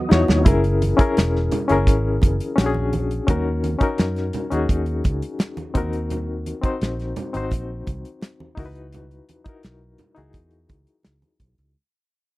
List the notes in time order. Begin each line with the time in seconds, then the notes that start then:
Already playing: F#3 B3 F#4 D#5
0.09 E2 D#4 E4 F#4 C#5, snare, high conga
0.28 D#2, snare, low conga
0.44 F#1 C#4 E4 G#4, kick, closed hi-hat, muted conga, low conga
0.48 A#4
0.64 closed hi-hat
0.82 closed hi-hat, high conga
0.97 C#4 E4 G#4 A#4, muted fingered electric bass stroke, kick, closed hi-hat
1.17 E1, snare, closed hi-hat, muted conga
1.36 snare
1.52 closed hi-hat, low conga
1.68 F#1 C#4 E4 G#4 A#4, closed hi-hat, high conga
1.87 G#1, kick, closed hi-hat
2.22 F#1, kick, closed hi-hat, muted conga, high conga
2.40 closed hi-hat
2.56 A#1 C#4 D4 F#4 G4, snare, closed hi-hat
2.66 G#4
2.74 high conga
2.93 closed hi-hat, muted conga, high conga
3.11 closed hi-hat
3.27 D#2 C#4 D#4 F#4 A#4, kick, closed hi-hat, low conga
3.64 closed hi-hat, muted conga, high conga
3.79 C#4 D#4 F#4, muted fingered electric bass stroke, kick, closed hi-hat
3.83 A#4
3.98 F#2, snare, closed hi-hat, muted conga
4.16 snare, closed hi-hat
4.33 closed hi-hat, low conga
4.50 D#2 C#4 D#4 F#4 G#4, closed hi-hat, high conga
4.69 D#2, kick, closed hi-hat
4.86 closed hi-hat
5.04 C#2, kick, closed hi-hat, high conga
5.22 closed hi-hat
5.39 snare, closed hi-hat, muted conga
5.57 closed hi-hat, high conga
5.74 D#2 C4 D#4 F#4 A#4, kick, closed hi-hat, muted conga, high conga
5.93 closed hi-hat
6.10 closed hi-hat, muted conga, low conga
6.46 closed hi-hat, high conga
6.62 C4 D#4 F#4 C5, muted fingered electric bass stroke, kick, closed hi-hat
6.82 A#1, snare, closed hi-hat
7.00 snare, closed hi-hat
7.16 closed hi-hat, muted conga, low conga
7.33 G#1 C4 D#4 F#4 C5, closed hi-hat, high conga
7.51 A#1, kick, closed hi-hat, muted conga
7.87 C2, kick, closed hi-hat, high conga
8.05 closed hi-hat
8.22 snare, closed hi-hat, muted conga
8.40 high conga
8.55 C#2 D#4 E4 F#4, kick, open hi-hat, muted conga, high conga
8.59 A#4
8.66 B4
8.75 closed hi-hat
8.93 closed hi-hat, muted conga, low conga
9.11 closed hi-hat
9.29 closed hi-hat, high conga
9.44 D#4 E4 F#4, muted fingered electric bass stroke, kick, closed hi-hat
9.49 A#4
9.63 B1, snare, closed hi-hat, muted conga
9.98 closed hi-hat, muted conga, low conga
10.15 C#2 D#4 E4 F#4 G#4, closed hi-hat, high conga
10.33 E2, kick, closed hi-hat, muted conga
10.51 closed hi-hat
10.69 C#2, kick, closed hi-hat, high conga
10.87 closed hi-hat
11.03 C#2, snare, closed hi-hat, muted conga
11.22 closed hi-hat, high conga
11.40 B1, kick, closed hi-hat, high conga
11.58 C#2, closed hi-hat